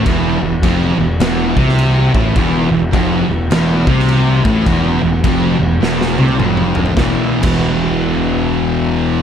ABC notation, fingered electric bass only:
X:1
M:4/4
L:1/16
Q:"Swing" 1/4=104
K:Clyd
V:1 name="Fingered electric bass" clef=bass
E,,,2 E,,,2 =F,,,2 E,,,2 E,,,2 C,,4 A,,,2 | E,,,2 E,,,2 =F,,,2 E,,,2 E,,,2 C,,4 A,,,2 | E,,,2 E,,,2 =F,,,2 E,,,2 E,,,2 C,,2 F,,,4 | E,,, z2 E,,,12- E,,, |]